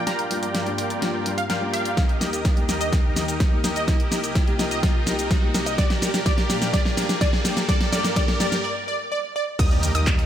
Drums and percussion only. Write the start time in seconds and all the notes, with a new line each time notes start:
0.07 snare, closed hi-hat
0.19 closed hi-hat
0.31 open hi-hat
0.43 closed hi-hat
0.55 snare, closed hi-hat
0.66 closed hi-hat
0.78 open hi-hat
0.90 closed hi-hat
1.02 snare, closed hi-hat
1.26 open hi-hat
1.38 closed hi-hat
1.50 snare, closed hi-hat
1.74 open hi-hat
1.85 closed hi-hat
1.97 kick, snare, closed hi-hat, shaker
2.09 closed hi-hat
2.21 snare, open hi-hat, shaker
2.33 closed hi-hat, shaker
2.45 kick, snare, closed hi-hat, shaker
2.57 closed hi-hat
2.69 snare, open hi-hat, shaker
2.81 closed hi-hat, shaker
2.93 kick, snare, closed hi-hat, shaker
3.16 snare, open hi-hat, shaker
3.28 closed hi-hat, shaker
3.40 kick, snare, closed hi-hat, shaker
3.64 snare, open hi-hat, shaker
3.76 closed hi-hat, shaker
3.88 kick, snare, closed hi-hat, shaker
4.00 closed hi-hat
4.12 snare, open hi-hat, shaker
4.24 closed hi-hat, shaker
4.35 kick, snare, closed hi-hat, shaker
4.47 closed hi-hat
4.59 snare, open hi-hat, shaker
4.71 closed hi-hat, shaker
4.83 kick, snare, closed hi-hat, shaker
5.07 snare, open hi-hat, shaker
5.19 closed hi-hat, shaker
5.31 kick, snare, closed hi-hat, shaker
5.54 snare, open hi-hat, shaker
5.66 closed hi-hat, shaker
5.78 kick, snare, closed hi-hat, shaker
5.90 snare, closed hi-hat
6.02 snare, open hi-hat, shaker
6.14 snare, closed hi-hat, shaker
6.26 kick, snare, closed hi-hat, shaker
6.38 snare, closed hi-hat
6.50 snare, open hi-hat, shaker
6.62 snare, closed hi-hat, shaker
6.73 kick, snare, closed hi-hat, shaker
6.85 snare
6.97 snare, open hi-hat, shaker
7.09 snare, closed hi-hat, shaker
7.21 kick, snare, closed hi-hat, shaker
7.33 snare
7.45 snare, open hi-hat, shaker
7.57 snare, closed hi-hat, shaker
7.69 kick, snare, closed hi-hat, shaker
7.81 snare, closed hi-hat
7.93 snare, open hi-hat, shaker
8.04 snare, closed hi-hat, shaker
8.16 kick, snare, closed hi-hat, shaker
8.28 snare, closed hi-hat
8.40 snare, open hi-hat, shaker
8.52 snare, closed hi-hat, shaker
9.59 kick, closed hi-hat, crash, shaker
9.71 closed hi-hat
9.83 open hi-hat, ride, shaker
9.95 closed hi-hat, shaker
10.07 kick, clap, closed hi-hat, shaker
10.19 closed hi-hat